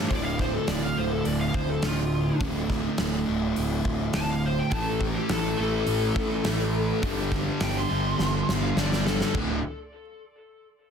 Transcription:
0.00 0.11 A3 loud
0.10 0.57 D1 medium
0.10 1.00 D2 medium
0.10 0.96 A2 medium
0.10 0.95 D3 loud
0.10 0.24 D5 loud
0.10 kick medium
0.10 open hi-hat soft
0.25 0.39 F5 medium
0.39 0.54 C5 medium
0.39 kick medium
0.39 snare soft
0.54 0.68 A4 medium
0.67 0.91 D1 loud
0.67 0.83 D5 medium
0.67 snare loud
0.67 open hi-hat medium
0.83 0.97 F5 medium
0.96 1.20 D1 medium
0.96 2.40 A2 medium
0.96 2.39 D3 medium
0.96 1.11 C5 medium
1.00 2.38 D2 medium
1.11 1.25 A4 medium
1.25 1.49 D1 medium
1.25 1.40 D5 medium
1.25 open hi-hat soft
1.41 1.55 F5 medium
1.54 1.78 D1 medium
1.54 1.70 C5 medium
1.54 kick medium
1.70 1.84 A4 medium
1.82 2.30 D1 medium
1.82 2.41 F4 medium
1.82 snare loud
1.82 open hi-hat soft
2.40 2.87 D1 medium
2.40 3.26 D2 loud
2.40 3.27 A2 medium
2.40 3.25 D3 loud
2.40 kick medium
2.40 open hi-hat soft
2.70 kick medium
2.70 snare soft
2.98 3.22 D1 medium
2.98 snare loud
2.98 open hi-hat medium
3.26 3.52 D1 medium
3.26 4.71 D2 medium
3.26 4.70 A2 medium
3.26 4.70 D3 medium
3.56 3.80 D1 medium
3.56 open hi-hat medium
3.85 4.08 D1 medium
3.85 kick medium
4.13 4.61 D1 medium
4.13 4.29 A5 loud
4.13 snare loud
4.13 open hi-hat medium
4.31 4.44 F5 loud
4.46 4.59 C5 medium
4.59 4.73 G5 medium
4.71 5.18 A1 medium
4.71 5.57 A2 medium
4.71 5.58 E3 loud
4.71 5.57 A3 medium
4.71 4.87 A5 medium
4.71 kick loud
4.71 open hi-hat medium
4.87 5.01 A4 medium
5.01 kick medium
5.15 5.30 G4 loud
5.29 5.53 A1 medium
5.29 5.58 A4 medium
5.29 snare loud
5.29 open hi-hat medium
5.58 5.82 A1 medium
5.58 7.02 A2 medium
5.58 7.02 E3 medium
5.58 7.01 A3 medium
5.58 7.29 A4 loud
5.87 6.11 A1 medium
5.87 open hi-hat medium
6.16 6.39 A1 medium
6.16 kick medium
6.44 6.91 A1 medium
6.44 7.01 A2 medium
6.44 7.02 E3 medium
6.44 7.02 A3 medium
6.44 snare loud
6.44 open hi-hat medium
7.02 7.49 G1 medium
7.02 7.88 G2 medium
7.02 7.89 D3 loud
7.02 7.88 G3 loud
7.02 kick loud
7.02 open hi-hat soft
7.31 kick medium
7.31 snare soft
7.60 7.84 G1 medium
7.60 7.77 G5 loud
7.60 snare loud
7.60 open hi-hat medium
7.78 8.61 C6 loud
7.89 8.13 G1 medium
7.89 9.34 G2 medium
7.89 9.33 D3 medium
7.89 9.32 G3 medium
8.19 8.42 G1 medium
8.19 snare medium
8.49 8.71 G1 medium
8.49 snare medium
8.63 8.77 F5 loud
8.76 9.22 G1 medium
8.76 9.32 G2 medium
8.76 9.33 D3 medium
8.76 9.33 G3 medium
8.76 9.05 D5 loud
8.76 snare medium
8.92 snare medium
9.06 9.34 A4 medium
9.06 snare medium
9.21 snare medium
9.35 9.62 D1 medium
9.35 9.58 D2 medium
9.35 9.58 A2 loud
9.35 9.58 D3 loud
9.35 kick medium
9.35 floor tom medium
9.35 splash medium

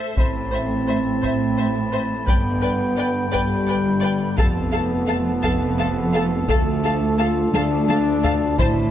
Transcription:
0.00 0.17 A4 soft
0.00 0.17 C5 soft
0.00 0.17 E5 soft
0.15 1.09 A1 soft
0.15 1.10 A2 soft
0.15 2.24 A3 soft
0.15 2.23 C4 medium
0.15 2.24 E4 soft
0.15 0.26 C5 soft
0.15 0.26 E5 soft
0.15 2.24 A5 soft
0.15 4.34 B5 soft
0.15 taiko medium
0.52 0.60 C5 soft
0.52 0.61 C5 soft
0.52 0.62 E5 soft
0.87 0.95 C5 soft
0.87 0.97 C5 soft
0.87 0.96 E5 soft
1.22 2.15 A1 soft
1.22 2.15 A2 medium
1.22 1.31 C5 soft
1.22 1.32 C5 soft
1.22 1.32 E5 soft
1.22 taiko medium
1.57 1.65 C5 soft
1.57 1.66 C5 soft
1.57 1.67 E5 soft
1.92 2.00 C5 soft
1.92 2.01 C5 soft
1.92 2.01 E5 soft
2.26 3.20 G1 medium
2.26 3.20 G2 medium
2.26 4.37 B3 medium
2.26 3.31 B3 medium
2.26 4.37 D4 medium
2.26 2.35 B4 soft
2.26 2.36 D5 soft
2.26 4.37 G5 medium
2.26 2.37 G5 soft
2.26 taiko medium
2.62 2.70 B4 soft
2.62 2.71 D5 soft
2.62 2.70 G5 soft
2.97 3.05 B4 soft
2.97 3.05 D5 soft
2.97 3.06 G5 soft
3.32 4.25 G1 medium
3.32 4.25 G2 soft
3.32 4.37 G3 medium
3.32 3.41 B4 soft
3.32 3.40 D5 soft
3.32 3.41 G5 soft
3.32 taiko medium
3.67 3.76 B4 soft
3.67 3.75 D5 soft
3.67 3.76 G5 soft
4.00 4.10 B4 soft
4.00 4.08 D5 soft
4.00 4.11 G5 soft
4.37 5.31 F1 medium
4.37 5.30 F2 medium
4.37 6.48 A3 medium
4.37 6.48 B3 medium
4.37 8.59 F4 medium
4.37 8.58 A4 medium
4.37 4.46 A4 soft
4.37 4.45 F5 soft
4.37 8.91 A5 medium
4.37 4.46 A5 soft
4.37 taiko medium
4.72 4.81 A4 soft
4.72 4.80 F5 soft
4.72 4.82 A5 soft
5.07 5.16 A4 soft
5.07 5.15 F5 soft
5.07 5.17 A5 soft
5.43 6.36 F1 medium
5.43 6.36 F2 medium
5.43 5.52 A4 soft
5.43 5.51 F5 soft
5.43 5.51 A5 medium
5.43 taiko medium
5.79 5.87 A4 soft
5.79 5.87 F5 soft
5.79 5.87 A5 soft
6.13 6.22 A4 soft
6.13 6.21 F5 soft
6.13 6.23 A5 soft
6.48 7.41 D2 medium
6.48 7.18 A3 medium
6.48 8.58 D4 medium
6.48 6.58 A4 medium
6.48 6.57 F5 medium
6.48 6.57 A5 medium
6.48 taiko medium
6.84 6.92 A4 soft
6.84 6.92 F5 soft
6.84 6.93 A5 soft
7.18 7.53 F4 medium
7.18 7.28 A4 soft
7.18 7.27 F5 soft
7.18 7.27 A5 medium
7.52 8.46 D2 medium
7.52 8.56 D4 medium
7.52 7.63 A4 medium
7.52 7.62 F5 medium
7.52 7.62 A5 medium
7.52 taiko high medium
7.89 7.97 A4 medium
7.89 7.97 F5 soft
7.89 7.97 A5 soft
7.89 taiko high medium
8.24 8.32 A4 soft
8.24 8.32 F5 medium
8.24 8.33 A5 medium
8.24 taiko low medium
8.57 8.91 A1 medium
8.57 8.91 A2 medium
8.57 8.91 C4 medium
8.57 8.91 E4 medium
8.57 8.91 E4 loud
8.57 8.67 C5 medium
8.57 8.68 C5 medium
8.57 8.68 A5 medium
8.57 8.91 B5 medium
8.57 taiko medium

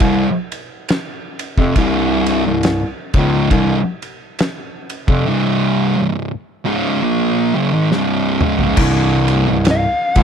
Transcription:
0.00 0.24 C2 loud
0.00 0.25 C2 medium
0.00 0.25 G2 loud
0.00 kick loud
0.00 ride loud
0.52 ride medium
0.89 snare loud
0.89 ride loud
1.39 ride medium
1.58 1.75 F2 loud
1.58 1.75 C3 loud
1.58 kick loud
1.76 2.41 C2 loud
1.76 2.44 C2 loud
1.76 2.45 G2 loud
1.76 2.45 C3 loud
1.76 kick loud
1.76 ride loud
2.26 ride medium
2.46 2.86 C2 medium
2.46 2.79 C2 medium
2.46 2.79 G2 medium
2.63 snare loud
2.63 ride loud
3.14 3.49 C#2 medium
3.14 3.50 C#2 loud
3.14 3.51 G#2 loud
3.14 3.51 C#3 loud
3.14 kick loud
3.14 ride medium
3.51 3.75 C2 loud
3.51 3.75 C2 medium
3.51 3.76 G2 medium
3.51 kick loud
3.51 ride loud
4.02 ride medium
4.39 snare loud
4.39 ride loud
4.90 ride medium
5.08 5.25 F2 medium
5.08 5.26 F2 medium
5.08 5.26 C3 loud
5.08 kick loud
5.26 5.95 C2 loud
5.26 5.95 G2 loud
5.26 5.95 C3 loud
5.96 6.30 C2 medium
5.96 6.30 G2 medium
6.65 7.01 C#2 medium
6.65 7.01 G#2 loud
6.65 7.02 C#3 loud
7.03 7.52 A#2 medium
7.03 7.52 F3 medium
7.03 7.52 A#3 medium
7.54 7.71 F#2 medium
7.54 7.71 C#3 loud
7.73 7.90 G#2 medium
7.73 7.90 D#3 loud
7.91 8.40 C2 loud
7.91 8.40 G2 loud
7.91 8.40 C3 loud
7.91 snare medium
8.40 8.77 C#2 medium
8.40 8.77 G#2 loud
8.40 8.78 C#3 loud
8.40 mid tom medium
8.59 floor tom medium
8.77 9.43 C2 loud
8.77 9.46 C2 loud
8.77 9.46 G2 loud
8.77 9.47 C3 loud
8.77 kick loud
8.77 crash loud
9.28 ride medium
9.47 9.88 C2 medium
9.47 9.81 C2 medium
9.47 9.81 G2 medium
9.65 snare loud
9.65 ride loud
9.71 10.23 F5 medium
10.15 10.23 C#2 loud
10.15 10.23 G#2 medium
10.15 10.23 C#3 loud
10.15 kick loud
10.15 ride medium

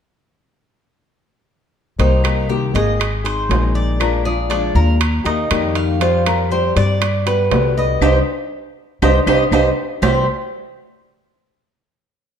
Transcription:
1.98 2.71 C2 medium
1.98 2.23 C3 medium
1.98 2.23 D#3 medium
1.98 2.24 A#3 medium
1.98 2.23 C4 medium
1.98 2.48 D#4 medium
1.98 2.22 G4 medium
1.98 2.24 C5 medium
1.98 high timbale medium
2.24 2.49 A#3 soft
2.24 2.49 C4 soft
2.24 2.48 G4 soft
2.24 2.76 A#4 medium
2.24 high timbale medium
2.24 claves medium
2.49 2.73 C3 medium
2.49 2.74 D#3 medium
2.49 2.74 A#3 medium
2.49 2.73 C4 medium
2.49 2.74 G4 medium
2.49 2.72 G4 medium
2.73 3.46 G#1 medium
2.73 2.99 A#3 soft
2.73 2.99 C4 soft
2.73 2.98 G4 soft
2.73 3.97 G#4 medium
2.73 3.24 D#5 medium
2.73 high timbale medium
2.99 muted steel-string acoustic guitar stroke medium
2.99 high timbale medium
2.99 claves medium
3.24 3.50 C4 soft
3.24 3.49 D#4 soft
3.24 3.49 G#4 soft
3.24 3.74 C5 medium
3.24 high timbale medium
3.49 4.69 A#1 medium
3.49 3.99 D#3 medium
3.49 3.99 G#3 medium
3.49 4.00 C4 medium
3.49 4.00 D#4 medium
3.49 4.00 G#4 medium
3.49 high timbale medium
3.49 low timbale medium
3.75 4.24 D5 medium
3.99 4.24 F3 medium
3.99 4.24 G#3 medium
3.99 4.25 D4 medium
3.99 4.24 F4 medium
3.99 4.24 A#4 medium
3.99 high timbale medium
3.99 claves medium
4.25 4.50 G#3 soft
4.25 4.50 D4 soft
4.25 4.50 F4 soft
4.25 4.50 G#4 medium
4.25 5.73 D5 medium
4.50 4.74 F3 medium
4.50 4.75 G#3 medium
4.50 4.75 D4 medium
4.50 4.74 D4 medium
4.50 4.73 F4 medium
4.50 high timbale medium
4.75 5.22 D#2 medium
4.75 5.00 G#3 soft
4.75 5.00 D4 soft
4.75 4.99 F4 medium
4.75 5.24 A#4 medium
4.99 muted steel-string acoustic guitar stroke medium
4.99 high timbale medium
4.99 claves medium
5.24 5.49 D#2 medium
5.24 5.50 A#3 soft
5.24 5.50 D#4 soft
5.24 5.74 D#4 medium
5.24 5.49 G4 medium
5.24 high timbale medium
5.50 6.70 F2 medium
5.50 6.00 D#3 medium
5.50 6.00 G3 medium
5.50 6.00 A#3 medium
5.50 6.00 D#4 medium
5.50 6.01 G4 medium
5.50 high timbale medium
5.50 claves medium
5.75 6.00 F5 medium
5.75 high timbale medium
6.00 6.25 F3 medium
6.00 6.25 G3 medium
6.00 6.25 C4 medium
6.00 6.50 F4 medium
6.00 6.24 G4 medium
6.00 6.27 C5 loud
6.00 high timbale medium
6.25 6.50 G3 soft
6.25 6.50 G4 soft
6.25 6.50 A#4 medium
6.25 high timbale medium
6.25 claves medium
6.50 6.75 F3 medium
6.50 6.76 G3 medium
6.50 6.76 C4 medium
6.50 6.75 G4 medium
6.50 6.76 C5 medium
6.50 6.77 C5 medium
6.76 7.48 G2 medium
6.76 7.01 G3 soft
6.76 7.01 C4 soft
6.76 7.00 G4 medium
6.76 7.25 D5 medium
6.76 7.27 D5 loud
6.76 high timbale medium
7.01 muted steel-string acoustic guitar stroke medium
7.01 high timbale medium
7.01 claves medium
7.26 7.51 G3 soft
7.26 7.51 B3 soft
7.26 7.51 G4 medium
7.26 7.75 B4 medium
7.26 7.74 B4 medium
7.26 high timbale medium
7.51 7.98 C2 medium
7.51 8.01 B2 medium
7.51 8.01 D3 medium
7.51 8.01 G3 medium
7.51 8.01 B3 medium
7.51 8.02 G4 medium
7.51 high timbale medium
7.51 low timbale medium
7.78 7.85 B4 medium
7.78 8.01 D#5 medium
8.01 8.20 C2 medium
8.01 8.18 G3 medium
8.01 8.18 C4 medium
8.01 8.18 D#4 medium
8.01 8.18 G4 medium
8.01 8.19 G4 medium
8.01 8.18 C5 medium
8.01 8.19 C5 loud
8.01 8.18 D#5 medium
8.01 8.19 D#5 medium
8.01 high timbale medium
8.01 claves medium
9.02 9.21 C2 medium
9.02 9.19 G3 medium
9.02 9.19 C4 medium
9.02 9.19 D#4 medium
9.02 9.18 G4 loud
9.02 9.19 G4 medium
9.02 9.18 C5 medium
9.02 9.19 C5 medium
9.02 9.19 D#5 medium
9.02 high timbale medium
9.02 claves medium
9.27 9.46 C2 medium
9.27 9.43 G3 loud
9.27 9.44 C4 loud
9.27 9.43 D#4 medium
9.27 9.44 G4 medium
9.27 9.44 C5 medium
9.27 9.43 D#5 medium
9.27 9.44 D#5 medium
9.27 high timbale medium
9.27 claves loud
9.51 9.71 C2 medium
9.51 9.68 G3 medium
9.51 9.68 C4 medium
9.51 9.68 D#4 medium
9.51 9.69 G4 medium
9.51 9.69 C5 medium
9.51 9.69 D#5 medium
9.51 high timbale medium
9.51 claves loud
10.02 10.26 C2 medium
10.02 10.22 C3 medium
10.02 10.23 E3 medium
10.02 10.23 G3 medium
10.02 10.26 C4 medium
10.02 10.23 C4 medium
10.02 10.23 E4 medium
10.02 10.26 G4 medium
10.02 10.26 C5 medium
10.02 low timbale loud
10.02 claves medium

